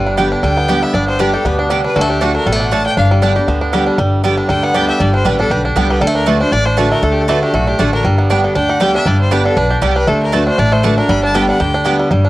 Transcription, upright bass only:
0.00 0.33 G1 loud
0.43 0.83 D2 medium
0.94 1.34 G1 medium
1.45 1.85 D2 medium
1.96 2.36 D2 medium
2.46 2.86 A1 medium
2.97 3.37 G1 medium
3.48 3.88 D2 medium
3.98 4.39 G1 loud
4.49 4.89 D2 medium
5.00 5.20 G1 loud
5.25 5.47 A1 medium
5.50 5.72 B1 medium
5.76 5.98 C2 medium
6.01 6.42 D2 loud
6.51 6.92 A1 medium
7.02 7.43 D2 medium
7.53 7.75 B1 medium
7.79 8.01 A1 medium
8.04 8.45 G1 medium
8.56 8.96 D2 medium
9.06 9.46 G1 medium
9.57 9.78 B1 medium
9.82 10.04 C2 medium
10.07 10.48 D2 loud
10.58 10.99 A1 medium
11.09 11.49 G1 loud
11.60 12.00 D2 medium
12.11 12.29 G1 medium

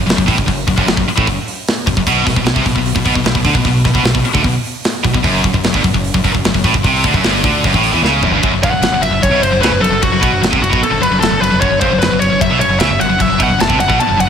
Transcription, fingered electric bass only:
0.05 0.16 F#1 medium
0.18 0.27 F#1 medium
0.28 0.37 A1 medium
0.39 0.47 F#1 medium
0.49 0.66 F#1 medium
0.67 0.77 F#1 medium
0.78 0.86 F#1 loud
0.86 0.96 F#1 medium
0.97 1.05 F#1 medium
1.06 muted fingered electric bass stroke soft
1.18 1.27 A1 loud
1.28 1.36 F#1 medium
1.87 1.96 F#1 medium
1.98 2.06 F#1 medium
2.07 2.25 B1 medium
2.27 2.36 B1 medium
2.37 2.44 B1 medium
2.45 2.55 B1 medium
2.56 2.65 C2 medium
2.66 2.75 B1 medium
2.76 2.94 B1 medium
2.96 3.05 B1 medium
3.06 3.15 B1 loud
3.16 3.25 B1 medium
3.26 3.35 B1 medium
3.35 3.44 B1 medium
3.45 3.54 D2 medium
3.54 3.64 B1 medium
3.65 3.84 B1 medium
3.86 3.94 B1 medium
3.94 4.03 B1 medium
4.03 4.14 B1 medium
4.15 4.24 B1 medium
4.24 muted fingered electric bass stroke soft
4.35 4.43 D2 loud
4.44 4.54 B1 medium
5.04 5.13 B1 medium
5.14 5.24 B1 medium
5.24 5.43 F#1 loud
5.45 5.53 F#1 medium
5.54 5.63 F#1 medium
5.64 5.73 F#1 medium
5.74 5.83 G1 loud
5.84 5.94 F#1 medium
5.95 6.13 F#1 medium
6.14 6.24 F#1 medium
6.25 6.34 F#1 medium
6.35 6.44 F#1 medium
6.46 6.54 F#1 medium
6.55 6.63 F#1 medium
6.64 6.73 A1 medium
6.74 6.83 F#1 medium
6.84 7.03 C2 loud
7.04 7.13 D2 medium
7.14 7.23 F#1 loud
7.25 7.43 G1 loud
7.44 7.62 D2 medium
7.64 7.73 F#1 loud
7.74 7.92 A1 medium
7.93 8.02 E2 loud
8.02 8.21 C#2 loud
8.21 8.31 F#1 medium
8.31 8.42 G1 medium
8.44 8.49 F#1 loud
8.50 8.61 F#1 medium
8.63 8.69 G1 medium
8.70 8.79 F#1 medium
8.80 8.89 F#1 medium
8.90 9.00 F#1 medium
9.01 9.10 F#1 medium
9.11 9.21 F#1 medium
9.24 9.29 F#1 medium
9.30 9.39 B1 medium
9.40 9.50 F#1 medium
9.51 9.59 F#1 medium
9.59 9.69 C#2 medium
9.70 9.80 F#1 medium
9.81 9.89 F#1 medium
9.90 10.00 F#1 medium
10.03 10.09 F#1 medium
10.10 10.20 F#1 medium
10.22 10.31 B1 loud
10.31 10.41 F#1 medium
10.42 10.51 F#1 medium
10.53 10.61 C2 medium
10.62 10.71 F#1 medium
10.73 10.82 B1 loud
10.83 muted fingered electric bass stroke soft
10.92 11.01 F#1 medium
11.02 11.10 F#1 medium
11.11 11.21 F#1 medium
11.22 11.31 F#1 medium
11.31 11.41 F#1 medium
11.42 11.51 F#1 medium
11.54 11.62 F#1 medium
11.63 11.71 F#1 medium
11.72 11.81 F#1 medium
11.82 11.91 G1 medium
11.92 12.01 F#1 medium
12.02 12.11 F#1 medium
12.12 12.21 F#1 medium
12.22 12.31 F#1 medium
12.32 12.40 F#1 medium
12.41 12.50 F#1 medium
12.51 12.60 B1 loud
12.60 12.69 F#1 medium
12.69 12.79 F#1 medium
12.80 12.90 C#2 medium
12.90 13.00 F#1 medium
13.01 13.09 F#1 medium
13.10 13.20 F#1 medium
13.20 13.30 F#1 medium
13.32 13.39 F#1 medium
13.40 13.50 B1 medium
13.50 13.60 F#1 medium
13.60 13.70 F#1 medium
13.70 13.79 C2 medium
13.80 13.89 F#1 medium
13.90 13.99 B1 loud
14.00 muted fingered electric bass stroke soft
14.10 14.18 F#1 medium
14.19 14.29 F#1 medium

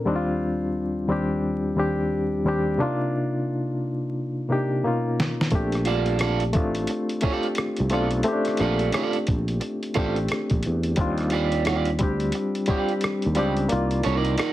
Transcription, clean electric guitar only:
5.85 6.17 F4 medium
5.85 6.18 A4 medium
5.85 6.18 D5 medium
6.20 6.42 F4 medium
6.20 6.43 A4 medium
6.20 6.43 D5 medium
6.90 muted clean electric guitar stroke soft
7.23 7.46 F4 medium
7.23 7.46 A4 medium
7.23 7.47 D5 medium
7.92 8.09 F4 soft
7.92 8.09 A4 medium
7.92 8.10 D5 medium
8.60 8.91 F4 medium
8.60 8.91 A4 medium
8.60 8.92 D5 medium
8.93 9.16 F4 medium
8.93 9.17 A4 medium
8.93 9.17 D5 medium
9.61 muted clean electric guitar stroke soft
9.94 10.17 F4 medium
9.94 10.17 A4 medium
9.94 10.17 D5 medium
11.32 11.63 F4 medium
11.32 11.64 G4 medium
11.32 11.64 D5 medium
11.66 11.89 F4 medium
11.66 11.89 G4 medium
11.66 11.90 D5 medium
12.34 muted clean electric guitar stroke soft
12.68 12.91 F4 medium
12.68 12.92 G4 medium
12.68 12.92 D5 medium
13.36 13.53 F4 medium
13.36 13.54 G4 medium
13.36 13.54 D5 medium
14.03 14.16 D4 medium
14.03 14.17 A4 medium
14.03 14.18 C#5 medium
14.16 14.36 D#4 medium
14.16 14.36 A#4 medium
14.16 14.36 D5 medium
14.38 14.53 D#4 medium
14.38 14.53 A#4 medium
14.38 14.53 D5 medium

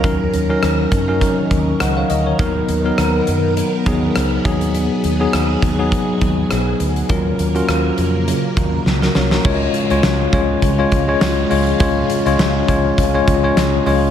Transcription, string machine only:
0.00 2.36 A#4 medium
0.04 4.41 D#3 medium
0.04 2.37 C#4 medium
2.39 7.06 B3 medium
2.39 4.43 A#4 medium
4.45 7.07 F#3 medium
4.45 7.07 G#4 medium
7.09 9.43 C#3 medium
7.09 9.43 A#3 medium
7.09 9.42 A#4 medium
9.45 14.11 C#3 medium
9.45 14.11 G#3 medium
9.45 14.11 F4 medium

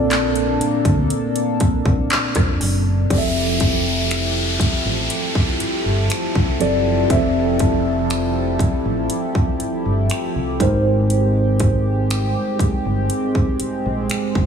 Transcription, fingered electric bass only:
0.00 0.56 A#1 medium
0.60 muted fingered electric bass stroke soft
0.85 1.07 D2 medium
1.61 muted fingered electric bass stroke soft
1.85 2.07 C2 medium
2.36 2.57 F2 medium
2.60 3.03 F#1 medium
3.10 4.56 F1 medium
4.85 5.07 A1 medium
5.60 muted fingered electric bass stroke soft
5.85 6.07 G1 medium
6.35 6.57 C2 medium
6.60 7.03 F#1 medium
7.10 8.56 F1 loud
8.85 9.07 A1 medium
9.61 muted fingered electric bass stroke soft
9.86 10.07 G1 medium
10.35 10.62 C2 medium
10.60 12.33 G#1 medium
12.59 muted fingered electric bass stroke soft
12.85 13.07 G1 medium
13.61 muted fingered electric bass stroke soft
13.86 14.07 A#1 medium
14.35 14.46 G#1 medium

